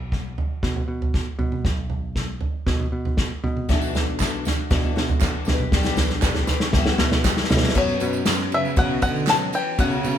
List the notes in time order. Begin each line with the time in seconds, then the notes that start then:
Already playing: B1 F#4
0.12 kick, snare, mid tom
0.38 floor tom
0.63 B2, kick, snare, floor tom
0.76 floor tom
0.88 B2
1.02 floor tom
1.14 kick, snare
1.39 B2, floor tom
1.52 mid tom
1.65 B1, kick, snare, floor tom
1.90 floor tom
2.16 kick, snare, mid tom
2.41 floor tom
2.67 B2, kick, snare, floor tom
2.80 floor tom
2.92 B2
3.05 floor tom
3.17 kick, snare
3.44 B2, floor tom
3.57 mid tom
3.69 B1 B2 E3 A3 D4 F#4, kick, snare, floor tom, tambourine
3.82 tambourine
3.93 A3 D4 F#4, snare, floor tom, tambourine
4.19 E3 A3 D4 F#4, kick, snare, clap, mid tom, tambourine
4.45 A3 D4 F#4, snare, floor tom, tambourine
4.70 B2 E3 A3 D4 F#4, kick, snare, floor tom
4.83 floor tom, tambourine
4.96 B2 A3 D4 F#4, snare
5.08 floor tom, tambourine
5.20 E3 A3 D4 F#4, kick, snare, clap, tambourine
5.45 B1 D4 G4, snare, floor tom, tambourine
5.50 B3
5.58 mid tom, tambourine
5.72 B1 B2 G3 B3 D4 G4, kick, snare, floor tom
5.83 snare, tambourine
5.97 B3 D4 G4, snare, floor tom, tambourine
6.09 snare, tambourine
6.22 G3 B3 D4 G4, kick, snare, clap, mid tom, tambourine
6.35 snare, floor tom
6.47 B3 D4 G4, snare, floor tom, tambourine
6.60 snare
6.73 B1 B2 G3 B3 E4 F#4, kick, snare, floor tom, mid tom, tambourine
6.86 snare, floor tom
6.98 B2 F#4, snare, clap, floor tom
7.03 B3 E4
7.12 snare, floor tom
7.24 G3 B3 E4, kick, snare, clap, tambourine
7.28 F#4
7.37 snare
7.44 snare
7.50 B2 E4 F#4, snare, floor tom, mid tom, tambourine
7.54 B3, snare
7.63 snare, mid tom
7.69 snare
7.75 F#2 B2 F#3 B3 C#4 F#4 C#5, kick, crash, tambourine
7.89 tambourine
8.00 B2 C#4 F#4, ride, tambourine
8.05 B3
8.13 tambourine
8.25 F#2 F#3 B3 C#4 F#4, snare, clap, ride, tambourine
8.39 snare
8.52 C#3 B3 C#4 F#4 E5, ride
8.65 tambourine
8.76 B2 C#3 F#3 B3 C#4 F#4 F#5, kick, ride
9.02 B3 C#4 F#4 F#5, kick, ride, tambourine
9.06 D3
9.15 tambourine
9.27 F#3 B3 C#4 A5, snare, clap, ride, tambourine
9.31 F#3 F#4
9.53 E3 B3 C#4 F#4 G5, ride, tambourine
9.78 B2 C#3 F#3 A3 C#4 F#4 F#5, kick, ride, tambourine
9.91 tambourine
10.03 B2 A3 C#4 F#4, ride, tambourine